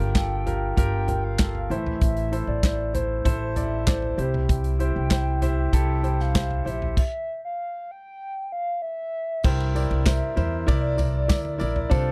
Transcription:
Already playing: grand piano G2 D3 F4 G4 A#4, soft synth lead G5
0.00 upright bass G1, closed hi-hat
0.15 grand piano F4 G4 A4, kick, snare, clap, closed hi-hat
0.46 grand piano F4 G4 A#4, closed hi-hat, floor tom
0.77 upright bass G1, grand piano F4 G4 A#4, soft synth lead G5, kick, closed hi-hat
1.08 grand piano F4 G4 A#4, closed hi-hat, floor tom
1.24 soft synth lead F5
1.39 grand piano F4 G4 A4, kick, snare, clap, closed hi-hat
1.55 floor tom
1.70 upright bass A1, grand piano A2 E3 E4 A4 C5, soft synth lead E5, closed hi-hat
1.86 floor tom
2.01 upright bass A1, soft synth lead E5, kick, closed hi-hat
2.17 closed hi-hat
2.32 grand piano E4 A4 C5, closed hi-hat
2.47 upright bass A1, soft synth lead D5
2.63 grand piano E4 A4 C5, kick, snare, clap, closed hi-hat
2.94 grand piano E4 A4 C5, soft synth lead C5, closed hi-hat, floor tom
3.25 upright bass A1, grand piano E4 A4 C5, kick, closed hi-hat
3.56 grand piano E4 A4 D5, soft synth lead E5, closed hi-hat, floor tom
3.87 grand piano E4 A4 D5, soft synth lead C5, kick, snare, clap, closed hi-hat
4.02 floor tom
4.17 upright bass C2, grand piano C3 G3 E4 G4 C5, closed hi-hat
4.34 floor tom
4.49 soft synth lead G5, kick, closed hi-hat
4.64 closed hi-hat
4.79 grand piano E4 G4 C5, closed hi-hat
4.96 upright bass C2
5.10 grand piano E4 G4 C5, kick, snare, clap, closed hi-hat
5.42 grand piano E4 G4 C5, closed hi-hat, floor tom
5.73 upright bass C2, grand piano E4 G4 A4, soft synth lead G5, kick, closed hi-hat
6.03 grand piano E4 G4 C5, closed hi-hat
6.20 soft synth lead F5, snare
6.34 grand piano E4 G4 C5, kick, snare, clap, closed hi-hat
6.51 floor tom
6.65 upright bass A#1, grand piano E4 G4 C5, soft synth lead E5, closed hi-hat
6.82 floor tom
6.97 soft synth lead E5, kick, crash
7.45 soft synth lead F5
7.91 soft synth lead G5
8.52 soft synth lead F5
8.82 soft synth lead E5
9.43 upright bass C2, grand piano G2 E4 A#4 C5, soft synth lead G5, kick, crash, tambourine
9.60 ride
9.75 grand piano E4 A#4 D5, ride, tambourine
9.91 upright bass C2, ride
10.06 grand piano E4 A#4 C5, soft synth lead E5, kick, snare, clap, ride, tambourine
10.36 upright bass E2, grand piano E4 A#4 C5, floor tom, ride, tambourine
10.67 upright bass C2, grand piano E4 A#4 D5, soft synth lead D5, kick, ride, tambourine
10.74 soft synth lead E5
10.82 soft synth lead D5
10.97 grand piano E4 A#4 D5, floor tom, ride, tambourine
11.28 upright bass D2, grand piano E4 A#4 D5, kick, snare, clap, ride, tambourine
11.45 floor tom
11.58 upright bass A#1, grand piano E4 A#4 D5, ride, tambourine
11.76 floor tom
11.90 upright bass C2, grand piano C3 D4 F4 A4, soft synth lead C5, kick, ride, tambourine

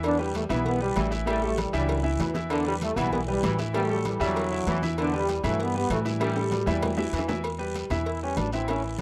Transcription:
Already playing: upright bass E2, grand piano E3 E4 E5
0.03 trombone section D3 B3 D4, cowbell, low agogo, long guiro
0.18 trombone section E3 G3, grand piano G3 G4 B4, high conga
0.34 trombone section E3 A3, cowbell, high conga, low timbale, low agogo, short guiro
0.49 upright bass B1, grand piano E3 E4 E5, trombone section E3 G3 B3, cowbell, high conga, low conga, low agogo, short guiro
0.65 trombone section G3 B3, cowbell, high conga, long guiro
0.80 trombone section E3 G3, grand piano G3 G4 B4
0.96 upright bass A1, trombone section E3, cowbell, high conga, low timbale, low agogo, short guiro
1.11 grand piano E3 E4 E5, cowbell, short guiro
1.26 grand piano E3 E4 E5, trombone section E3 G3 A3, cowbell, low agogo, long guiro
1.41 trombone section F#3 A3, grand piano G3 G4 A4, high conga
1.58 trombone section E3 G3, cowbell, high conga, low timbale, low agogo, short guiro
1.73 upright bass C#2, grand piano E3 E4 E5, trombone section F#3 G3 D4, high conga, low agogo, short guiro
1.89 cowbell, high conga, low agogo, long guiro
2.03 grand piano E3 E4 E5, high conga
2.19 upright bass E2, trombone section E3, cowbell, high conga, low timbale, low agogo, short guiro
2.34 grand piano E3 E4 E5, cowbell, high conga, short guiro
2.50 trombone section D3 B3 D4, cowbell, low agogo, long guiro
2.66 trombone section E3 G3, grand piano G3 G4 B4, high conga
2.82 trombone section E3 A3, cowbell, high conga, low timbale, low agogo, short guiro
2.96 upright bass B1, grand piano E3 E4 E5, trombone section E3 G3 B3, cowbell, high conga, low conga, low agogo, short guiro
3.12 trombone section G3 B3, cowbell, high conga, low conga, long guiro
3.28 trombone section E3 G3, grand piano G3 G4 B4, high conga
3.43 upright bass A1, trombone section E3, cowbell, high conga, low timbale, low agogo, short guiro
3.59 grand piano E3 E4 E5, cowbell, high conga, short guiro
3.74 grand piano E3 E4 E5, trombone section E3 G3 A3, cowbell, low agogo, long guiro
3.79 trombone section B3
3.83 trombone section F#3 A3
3.89 trombone section F#3 A3, grand piano G3 G4 A4, high conga
4.05 trombone section E3 G3, cowbell, high conga, low timbale, low agogo, short guiro
4.20 upright bass E2, grand piano E3 E4 E5, trombone section F#3 G3, low agogo, short guiro
4.24 trombone section D3
4.36 cowbell, high conga, low agogo, long guiro
4.52 grand piano E3 E4 E5, high conga
4.67 upright bass E2, trombone section E3, cowbell, high conga, low timbale, low agogo, short guiro
4.82 grand piano E3 E4 E5, cowbell, high conga, short guiro
4.98 trombone section D3 B3 D4, cowbell, low agogo, long guiro
5.13 trombone section E3 G3, grand piano G3 G4 B4, high conga
5.29 cowbell, high conga, low timbale, low agogo, short guiro
5.44 upright bass G2, grand piano E3 E4 E5, trombone section E3 F#3 A3, cowbell, high conga, low conga, low agogo, short guiro
5.60 trombone section G3 B3, cowbell, high conga, long guiro
5.74 grand piano G3 G4 B4, trombone section G3 B3, high conga
5.90 upright bass A2, trombone section E3 A3, cowbell, high conga, low timbale, low agogo, short guiro
6.05 grand piano E3 E4 E5, trombone section E3 G3, cowbell, short guiro
6.20 grand piano E3 E4 E5, trombone section G3, cowbell, high conga, high timbale, low agogo, long guiro
6.35 grand piano G3 G4 A4, high conga, high timbale
6.52 cowbell, high conga, low timbale, low agogo, short guiro
6.66 upright bass E2, grand piano E3 E4 E5, trombone section G3, low conga, low timbale, low agogo, short guiro
6.83 cowbell, low conga, low timbale, low agogo, long guiro
6.97 grand piano E3 E4 E5, high bongo, low timbale
7.13 upright bass E2, trombone section E3, cowbell, low agogo, short guiro
7.19 low bongo
7.28 grand piano E3 E4 E5, cowbell, low bongo, low conga, low timbale, short guiro
7.44 cowbell, high conga, low agogo, long guiro
7.58 grand piano G3 G4 B4, high conga
7.75 cowbell, high conga, low timbale, low agogo, short guiro
7.90 upright bass E2, grand piano E3 E4 E5, cowbell, high conga, low conga, low agogo, short guiro
8.06 trombone E4, cowbell, high conga, long guiro
8.22 grand piano G3 G4 B4, trombone C#4, high conga
8.37 upright bass A1, trombone D4, cowbell, high conga, low timbale, low agogo, short guiro
8.53 grand piano E3 E4 E5, trombone C4, cowbell, short guiro
8.68 grand piano E3 E4 E5, trombone C#4, cowbell, high conga, low agogo, long guiro
8.84 trombone E3, high conga

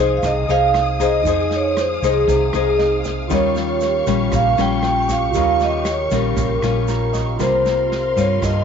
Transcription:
Already playing: fingered electric bass C2, nylon-string guitar F3 D#4 G#4, tine electric piano D#4 G#4 C5, string section G#4 F5 D#6, vibraphone C5
0.00 nylon-string guitar C5
0.17 vibraphone F5
0.23 fingered electric bass C2, nylon-string guitar C3, vibraphone D#5, kick, cross-stick, snare, shaker
0.48 fingered electric bass C2, nylon-string guitar D#4 G#4 C5, vibraphone F5, snare, shaker
0.74 cross-stick, snare
1.00 nylon-string guitar D#4 G#4 C5, vibraphone D#5, kick, snare, shaker
1.23 fingered electric bass F2, nylon-string guitar F3 D#4 C5, tine electric piano D#4 G#4, kick, snare, shaker
1.27 nylon-string guitar G#4, tine electric piano C5
1.51 snare, shaker
1.55 vibraphone C#5
1.77 vibraphone C5, cross-stick, snare, shaker
2.02 fingered electric bass C2, nylon-string guitar D#4 G#4 C5, kick, snare, shaker
2.07 vibraphone G#4
2.28 fingered electric bass C2, nylon-string guitar C3, kick, snare, shaker
2.53 fingered electric bass C2, nylon-string guitar D#4 G#4 C5, cross-stick, snare, shaker
2.78 tine electric piano D#5, snare
3.04 kick, snare, shaker
3.28 fingered electric bass D#2, nylon-string guitar D#3 G3 C#4 F4, tine electric piano F4 G4, string section G4 C#6, kick, cross-stick, snare, shaker
3.32 tine electric piano A#4 C#5, vibraphone C#5
3.55 snare, shaker
3.81 snare, shaker
4.07 fingered electric bass A#1, nylon-string guitar G3 C#4 F4, kick, snare, shaker
4.32 fingered electric bass A#1, nylon-string guitar A#2, vibraphone F5, kick, cross-stick, snare, shaker
4.57 fingered electric bass A#1, nylon-string guitar G3 C#4 F4, vibraphone G5, snare, shaker
4.83 cross-stick, snare
5.03 vibraphone G5
5.09 vibraphone F5, kick, snare, shaker
5.31 fingered electric bass D#2, nylon-string guitar G3, tine electric piano F4 G4 A#4, kick, snare, shaker
5.35 nylon-string guitar D#3 C#4 F4, tine electric piano C#5
5.60 vibraphone D#5, snare, shaker
5.85 cross-stick, snare, shaker
5.89 vibraphone C#5
6.11 fingered electric bass A#1, nylon-string guitar G3 C#4 F4, vibraphone A#4, kick, snare, shaker
6.36 fingered electric bass A#1, nylon-string guitar A#2, kick, snare, shaker
6.62 fingered electric bass A#1, nylon-string guitar G3 C#4 F4, cross-stick, snare, shaker
6.88 tine electric piano A#5, snare, shaker
7.13 tine electric piano D#5, kick, snare, shaker
7.36 fingered electric bass C2, nylon-string guitar C3 G3 A#3, tine electric piano F4 G4 A#4, string section A#4 F5 C6, kick, cross-stick, snare, shaker
7.41 nylon-string guitar F4, tine electric piano C5, vibraphone C5
7.65 snare, shaker
7.92 snare
8.17 fingered electric bass G2, nylon-string guitar G3 A#3 F4, vibraphone C#5, kick, snare, shaker
8.42 fingered electric bass G2, nylon-string guitar G2, vibraphone D#5, kick, cross-stick, snare, shaker

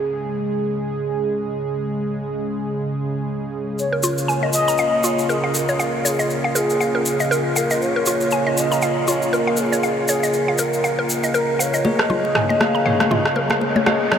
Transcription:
Already playing: analog synth pad C#3 G#3 G#4
3.78 analog synth pad A#3 F4, analog synth lead C#5, shaker
3.93 synth arpeggio sound A#4
4.03 synth arpeggio sound F4, shaker
4.18 shaker
4.28 synth arpeggio sound G#5, shaker
4.43 synth arpeggio sound D#5
4.53 analog synth lead D#5, shaker
4.68 synth arpeggio sound A#5, shaker
4.78 synth arpeggio sound F5, shaker
5.04 synth arpeggio sound F4, analog synth lead C#5, shaker
5.19 shaker
5.29 analog synth lead G#4, synth arpeggio sound A#4, shaker
5.44 synth arpeggio sound F5
5.54 analog synth lead A#4, shaker
5.69 synth arpeggio sound C#5, shaker
5.79 synth arpeggio sound F5, shaker
6.05 analog synth lead G#4, synth arpeggio sound C#5, shaker
6.19 synth arpeggio sound D#5, shaker
6.30 shaker
6.44 synth arpeggio sound F5
6.55 analog synth lead G#4, synth arpeggio sound A#4, shaker
6.70 shaker
6.80 synth arpeggio sound F5, shaker
6.95 synth arpeggio sound A#4
7.05 shaker
7.20 synth arpeggio sound D#5, shaker
7.31 analog synth lead G#4, synth arpeggio sound A#4, shaker
7.56 analog synth lead A#4, synth arpeggio sound F5, shaker
7.70 synth arpeggio sound D#5, shaker
7.81 analog synth lead C#5, shaker
7.96 synth arpeggio sound A#4
8.06 synth arpeggio sound F4, shaker
8.20 shaker
8.31 synth arpeggio sound G#5, shaker
8.47 synth arpeggio sound D#5
8.57 analog synth lead D#5, shaker
8.72 synth arpeggio sound A#5, shaker
8.82 synth arpeggio sound F5, shaker
9.08 synth arpeggio sound F4, analog synth lead C#5, shaker
9.22 shaker
9.33 analog synth lead A#4, synth arpeggio sound A#4, shaker
9.47 synth arpeggio sound F5
9.57 analog synth lead G#4, shaker
9.72 synth arpeggio sound C#5, shaker
9.83 synth arpeggio sound F5, shaker
10.08 analog synth lead G#4, synth arpeggio sound C#5, shaker
10.23 synth arpeggio sound D#5, shaker
10.33 shaker
10.48 synth arpeggio sound F5
10.58 synth arpeggio sound A#4, analog synth lead A#4, shaker
10.73 shaker
10.84 synth arpeggio sound F5, shaker
10.99 synth arpeggio sound A#4
11.09 shaker
11.24 synth arpeggio sound D#5, shaker
11.34 synth arpeggio sound A#4, analog synth lead A#4, shaker
11.59 analog synth lead C#5, synth arpeggio sound F5, shaker
11.74 synth arpeggio sound D#5, shaker
11.85 analog synth pad C#3 A#3 G#4, tine electric piano A#3 G#4 C#5, analog synth lead D#5, riser, muted conga, high conga
11.99 synth arpeggio sound A#4, cross-stick
12.10 synth arpeggio sound F4, low conga
12.25 muted conga
12.35 synth arpeggio sound G#5, cross-stick, mid tom
12.49 synth arpeggio sound D#5, muted conga
12.60 analog synth lead F5, cross-stick, high conga
12.75 synth arpeggio sound A#5, muted conga
12.86 tine electric piano A#3 G#4 C#5, synth arpeggio sound F5, mid tom
13.00 cross-stick, high conga
13.11 synth arpeggio sound F4, analog synth lead D#5, mid tom, muted conga
13.25 cross-stick
13.36 analog synth lead A#4, synth arpeggio sound A#4, muted conga
13.50 synth arpeggio sound F5, cross-stick, high conga
13.61 analog synth lead C#5, muted conga
13.76 synth arpeggio sound C#5, high conga
13.85 tine electric piano A#3 G#4 C#5, analog synth lead D#5, synth arpeggio sound F5, cross-stick, muted conga, high conga
14.12 synth arpeggio sound C#5, cross-stick, low conga

